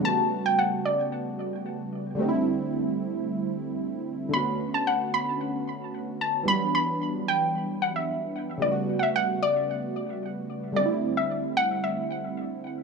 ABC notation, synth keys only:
X:1
M:4/4
L:1/8
Q:1/4=112
K:Glyd
V:1 name="Synth keys"
[C,G,A,B,F]8 | [D,G,A,=C^DE]8 | [D,A,B,CF]8 | [E,F,G,B,D]8 |
[C,G,A,B,EF]8 | [D,G,A,=CDE]8 |]